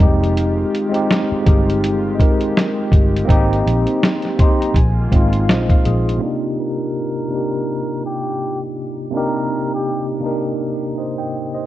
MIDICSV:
0, 0, Header, 1, 7, 480
1, 0, Start_track
1, 0, Key_signature, -3, "minor"
1, 0, Tempo, 731707
1, 239, Time_signature, 4, 2, 24, 8
1, 7650, End_track
2, 0, Start_track
2, 0, Title_t, "Muted trumpet"
2, 0, Program_c, 0, 59
2, 4330, Note_on_c, 0, 70, 83
2, 5258, Note_off_c, 0, 70, 0
2, 5284, Note_on_c, 0, 67, 80
2, 5640, Note_off_c, 0, 67, 0
2, 6011, Note_on_c, 0, 70, 89
2, 6363, Note_off_c, 0, 70, 0
2, 6391, Note_on_c, 0, 67, 69
2, 6602, Note_off_c, 0, 67, 0
2, 7650, End_track
3, 0, Start_track
3, 0, Title_t, "Tine electric piano"
3, 0, Program_c, 1, 4
3, 0, Control_c, 1, 64, 127
3, 0, Note_on_c, 1, 60, 91
3, 0, Note_on_c, 1, 63, 84
3, 7, Control_c, 1, 64, 0
3, 12, Note_on_c, 1, 56, 91
3, 17, Note_on_c, 1, 67, 105
3, 117, Control_c, 1, 64, 127
3, 472, Note_off_c, 1, 60, 0
3, 478, Note_off_c, 1, 63, 0
3, 485, Note_off_c, 1, 56, 0
3, 488, Note_off_c, 1, 67, 0
3, 584, Note_on_c, 1, 56, 92
3, 601, Note_on_c, 1, 60, 89
3, 616, Note_on_c, 1, 63, 75
3, 629, Note_on_c, 1, 67, 98
3, 830, Note_off_c, 1, 56, 0
3, 838, Note_off_c, 1, 60, 0
3, 846, Note_off_c, 1, 63, 0
3, 852, Note_off_c, 1, 67, 0
3, 927, Note_on_c, 1, 56, 76
3, 942, Note_on_c, 1, 60, 76
3, 959, Note_on_c, 1, 63, 65
3, 975, Note_on_c, 1, 67, 86
3, 1261, Note_off_c, 1, 56, 0
3, 1268, Note_off_c, 1, 60, 0
3, 1277, Note_off_c, 1, 63, 0
3, 1285, Note_off_c, 1, 67, 0
3, 1408, Note_on_c, 1, 56, 82
3, 1425, Note_on_c, 1, 60, 69
3, 1437, Note_on_c, 1, 63, 67
3, 1454, Note_on_c, 1, 70, 78
3, 1887, Note_off_c, 1, 56, 0
3, 1895, Note_off_c, 1, 60, 0
3, 1901, Note_off_c, 1, 63, 0
3, 1909, Note_off_c, 1, 70, 0
3, 2132, Note_on_c, 1, 58, 108
3, 2147, Note_on_c, 1, 60, 106
3, 2164, Note_on_c, 1, 63, 118
3, 2167, Control_c, 1, 64, 0
3, 2178, Note_on_c, 1, 67, 121
3, 2292, Control_c, 1, 64, 127
3, 2608, Note_off_c, 1, 58, 0
3, 2616, Note_off_c, 1, 60, 0
3, 2624, Note_off_c, 1, 63, 0
3, 2631, Note_off_c, 1, 67, 0
3, 2864, Note_on_c, 1, 58, 68
3, 2879, Note_on_c, 1, 60, 79
3, 2888, Note_on_c, 1, 84, 70
3, 2898, Note_on_c, 1, 63, 84
3, 2912, Note_on_c, 1, 67, 93
3, 3015, Note_off_c, 1, 84, 0
3, 3022, Note_on_c, 1, 82, 72
3, 3111, Note_off_c, 1, 58, 0
3, 3113, Note_off_c, 1, 82, 0
3, 3119, Note_off_c, 1, 60, 0
3, 3127, Note_on_c, 1, 80, 71
3, 3128, Note_off_c, 1, 63, 0
3, 3128, Control_c, 1, 64, 0
3, 3135, Note_off_c, 1, 67, 0
3, 3260, Control_c, 1, 64, 127
3, 3339, Note_on_c, 1, 56, 78
3, 3347, Note_off_c, 1, 80, 0
3, 3355, Note_on_c, 1, 60, 88
3, 3362, Note_on_c, 1, 77, 71
3, 3372, Note_on_c, 1, 63, 76
3, 3385, Note_on_c, 1, 65, 94
3, 3492, Note_off_c, 1, 77, 0
3, 3502, Note_on_c, 1, 77, 64
3, 3593, Note_off_c, 1, 77, 0
3, 3605, Note_off_c, 1, 63, 0
3, 3607, Note_on_c, 1, 72, 71
3, 3608, Note_on_c, 1, 75, 66
3, 3609, Note_on_c, 1, 68, 51
3, 3612, Note_off_c, 1, 65, 0
3, 3735, Note_off_c, 1, 75, 0
3, 3742, Note_on_c, 1, 77, 69
3, 3812, Note_off_c, 1, 56, 0
3, 3820, Note_off_c, 1, 60, 0
3, 3831, Note_off_c, 1, 72, 0
3, 3832, Note_off_c, 1, 68, 0
3, 3841, Note_on_c, 1, 68, 69
3, 3848, Note_on_c, 1, 65, 62
3, 3974, Note_off_c, 1, 68, 0
3, 3977, Note_off_c, 1, 65, 0
3, 3984, Note_on_c, 1, 65, 62
3, 3989, Note_on_c, 1, 62, 50
3, 4052, Note_on_c, 1, 48, 105
3, 4056, Note_off_c, 1, 77, 0
3, 4063, Note_on_c, 1, 58, 88
3, 4066, Note_off_c, 1, 62, 0
3, 4074, Note_on_c, 1, 62, 90
3, 4085, Note_on_c, 1, 63, 95
3, 4086, Control_c, 1, 64, 0
3, 4098, Note_on_c, 1, 67, 113
3, 4203, Control_c, 1, 64, 127
3, 4210, Note_off_c, 1, 65, 0
3, 4529, Note_off_c, 1, 48, 0
3, 4534, Note_off_c, 1, 58, 0
3, 4539, Note_off_c, 1, 62, 0
3, 4545, Note_off_c, 1, 63, 0
3, 4552, Note_off_c, 1, 67, 0
3, 4776, Note_on_c, 1, 48, 73
3, 4789, Note_on_c, 1, 58, 58
3, 4798, Note_on_c, 1, 62, 68
3, 4812, Note_on_c, 1, 63, 54
3, 4825, Note_on_c, 1, 67, 74
3, 5419, Note_off_c, 1, 48, 0
3, 5425, Note_off_c, 1, 58, 0
3, 5430, Note_off_c, 1, 62, 0
3, 5437, Note_off_c, 1, 63, 0
3, 5443, Note_off_c, 1, 67, 0
3, 5971, Note_on_c, 1, 48, 102
3, 5981, Note_on_c, 1, 58, 86
3, 5993, Note_on_c, 1, 62, 89
3, 6005, Note_on_c, 1, 63, 95
3, 6015, Note_on_c, 1, 67, 117
3, 6448, Note_off_c, 1, 48, 0
3, 6453, Note_off_c, 1, 58, 0
3, 6459, Note_off_c, 1, 62, 0
3, 6465, Note_off_c, 1, 63, 0
3, 6470, Note_off_c, 1, 67, 0
3, 6688, Note_on_c, 1, 48, 67
3, 6696, Note_on_c, 1, 58, 66
3, 6711, Note_on_c, 1, 62, 65
3, 6721, Note_on_c, 1, 63, 65
3, 6733, Note_on_c, 1, 70, 85
3, 7202, Note_on_c, 1, 75, 58
3, 7208, Note_on_c, 1, 72, 50
3, 7332, Note_off_c, 1, 75, 0
3, 7335, Note_off_c, 1, 48, 0
3, 7335, Note_on_c, 1, 79, 61
3, 7338, Note_off_c, 1, 72, 0
3, 7339, Note_off_c, 1, 58, 0
3, 7340, Note_on_c, 1, 75, 49
3, 7346, Note_off_c, 1, 62, 0
3, 7351, Note_off_c, 1, 63, 0
3, 7357, Note_off_c, 1, 70, 0
3, 7564, Note_off_c, 1, 75, 0
3, 7565, Note_off_c, 1, 79, 0
3, 7572, Note_on_c, 1, 75, 61
3, 7576, Note_on_c, 1, 72, 52
3, 7650, Note_off_c, 1, 72, 0
3, 7650, Note_off_c, 1, 75, 0
3, 7650, End_track
4, 0, Start_track
4, 0, Title_t, "Analog synth pad"
4, 0, Program_c, 2, 89
4, 0, Note_on_c, 2, 51, 80
4, 0, Note_on_c, 2, 56, 65
4, 0, Note_on_c, 2, 65, 69
4, 0, Note_on_c, 2, 67, 88
4, 2136, Note_off_c, 2, 65, 0
4, 2160, Note_on_c, 2, 60, 68
4, 3090, Note_off_c, 2, 67, 0
4, 3091, Note_off_c, 2, 56, 0
4, 3109, Note_on_c, 2, 56, 64
4, 3110, Note_off_c, 2, 60, 0
4, 3112, Note_on_c, 2, 65, 80
4, 3115, Note_on_c, 2, 58, 69
4, 4051, Note_off_c, 2, 51, 0
4, 4064, Note_off_c, 2, 56, 0
4, 4066, Note_off_c, 2, 65, 0
4, 4067, Note_off_c, 2, 58, 0
4, 7650, End_track
5, 0, Start_track
5, 0, Title_t, "Fingered electric bass"
5, 0, Program_c, 3, 33
5, 0, Note_on_c, 3, 29, 92
5, 416, Note_off_c, 3, 29, 0
5, 965, Note_on_c, 3, 31, 81
5, 1656, Note_off_c, 3, 31, 0
5, 1918, Note_on_c, 3, 31, 82
5, 2127, Note_off_c, 3, 31, 0
5, 2161, Note_on_c, 3, 32, 98
5, 2368, Note_off_c, 3, 32, 0
5, 2403, Note_on_c, 3, 34, 86
5, 2523, Note_off_c, 3, 34, 0
5, 3114, Note_on_c, 3, 34, 107
5, 3325, Note_off_c, 3, 34, 0
5, 3361, Note_on_c, 3, 32, 93
5, 3604, Note_off_c, 3, 32, 0
5, 3604, Note_on_c, 3, 34, 92
5, 3810, Note_off_c, 3, 34, 0
5, 3843, Note_on_c, 3, 34, 87
5, 4049, Note_off_c, 3, 34, 0
5, 7650, End_track
6, 0, Start_track
6, 0, Title_t, "Muted fingered electric bass strokes"
6, 864, Note_on_c, 9, 29, 45
6, 930, Note_off_c, 9, 29, 0
6, 7650, End_track
7, 0, Start_track
7, 0, Title_t, "Drums"
7, 1, Note_on_c, 9, 42, 59
7, 66, Note_off_c, 9, 42, 0
7, 154, Note_on_c, 9, 42, 53
7, 220, Note_off_c, 9, 42, 0
7, 244, Note_on_c, 9, 42, 88
7, 310, Note_off_c, 9, 42, 0
7, 490, Note_on_c, 9, 42, 59
7, 556, Note_off_c, 9, 42, 0
7, 619, Note_on_c, 9, 42, 48
7, 684, Note_off_c, 9, 42, 0
7, 726, Note_on_c, 9, 38, 106
7, 737, Note_on_c, 9, 42, 75
7, 792, Note_off_c, 9, 38, 0
7, 803, Note_off_c, 9, 42, 0
7, 961, Note_on_c, 9, 36, 96
7, 961, Note_on_c, 9, 42, 70
7, 1027, Note_off_c, 9, 36, 0
7, 1027, Note_off_c, 9, 42, 0
7, 1113, Note_on_c, 9, 42, 51
7, 1178, Note_off_c, 9, 42, 0
7, 1206, Note_on_c, 9, 42, 83
7, 1272, Note_off_c, 9, 42, 0
7, 1440, Note_on_c, 9, 36, 80
7, 1446, Note_on_c, 9, 42, 57
7, 1506, Note_off_c, 9, 36, 0
7, 1512, Note_off_c, 9, 42, 0
7, 1579, Note_on_c, 9, 42, 48
7, 1645, Note_off_c, 9, 42, 0
7, 1688, Note_on_c, 9, 38, 117
7, 1698, Note_on_c, 9, 42, 77
7, 1753, Note_off_c, 9, 38, 0
7, 1764, Note_off_c, 9, 42, 0
7, 1915, Note_on_c, 9, 36, 95
7, 1922, Note_on_c, 9, 42, 59
7, 1981, Note_off_c, 9, 36, 0
7, 1987, Note_off_c, 9, 42, 0
7, 2077, Note_on_c, 9, 42, 54
7, 2142, Note_off_c, 9, 42, 0
7, 2158, Note_on_c, 9, 36, 95
7, 2166, Note_on_c, 9, 42, 78
7, 2224, Note_off_c, 9, 36, 0
7, 2232, Note_off_c, 9, 42, 0
7, 2315, Note_on_c, 9, 42, 33
7, 2381, Note_off_c, 9, 42, 0
7, 2411, Note_on_c, 9, 42, 60
7, 2476, Note_off_c, 9, 42, 0
7, 2537, Note_on_c, 9, 42, 46
7, 2603, Note_off_c, 9, 42, 0
7, 2645, Note_on_c, 9, 38, 111
7, 2656, Note_on_c, 9, 42, 75
7, 2711, Note_off_c, 9, 38, 0
7, 2722, Note_off_c, 9, 42, 0
7, 2770, Note_on_c, 9, 42, 34
7, 2788, Note_on_c, 9, 38, 38
7, 2836, Note_off_c, 9, 42, 0
7, 2854, Note_off_c, 9, 38, 0
7, 2881, Note_on_c, 9, 36, 109
7, 2881, Note_on_c, 9, 42, 72
7, 2946, Note_off_c, 9, 36, 0
7, 2946, Note_off_c, 9, 42, 0
7, 3031, Note_on_c, 9, 42, 49
7, 3096, Note_off_c, 9, 42, 0
7, 3112, Note_on_c, 9, 36, 78
7, 3122, Note_on_c, 9, 42, 73
7, 3177, Note_off_c, 9, 36, 0
7, 3187, Note_off_c, 9, 42, 0
7, 3358, Note_on_c, 9, 36, 79
7, 3362, Note_on_c, 9, 42, 58
7, 3424, Note_off_c, 9, 36, 0
7, 3427, Note_off_c, 9, 42, 0
7, 3495, Note_on_c, 9, 42, 51
7, 3560, Note_off_c, 9, 42, 0
7, 3602, Note_on_c, 9, 38, 121
7, 3613, Note_on_c, 9, 42, 80
7, 3668, Note_off_c, 9, 38, 0
7, 3678, Note_off_c, 9, 42, 0
7, 3735, Note_on_c, 9, 36, 92
7, 3738, Note_on_c, 9, 42, 34
7, 3800, Note_off_c, 9, 36, 0
7, 3804, Note_off_c, 9, 42, 0
7, 3840, Note_on_c, 9, 42, 61
7, 3905, Note_off_c, 9, 42, 0
7, 3995, Note_on_c, 9, 42, 53
7, 4060, Note_off_c, 9, 42, 0
7, 7650, End_track
0, 0, End_of_file